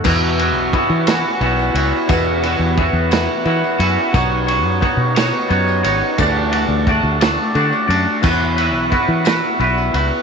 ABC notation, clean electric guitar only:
X:1
M:6/8
L:1/8
Q:3/8=59
K:Bdor
V:1 name="Clean electric guitar"
[E,,B,,E,B,EF] [E,B,EF] [E,B,EF] [E,B,EF] [E,B,EF] [E,B,EF] | [E,,B,,E,B,EF] [E,B,EF] [E,B,EF] [E,B,EF] [E,B,EF] [E,B,EF] | [B,^DFc] [DFc] [B,DFc] [DFc] [B,DFc] [DFc] | [D,E,A,DFd] [A,DFd] [A,DFd] [A,DFd] [A,DFd] [A,DFd] |
[E,B,EFB] [EFB] [B,EFB] [EFB] [B,EFB] [EFB] |]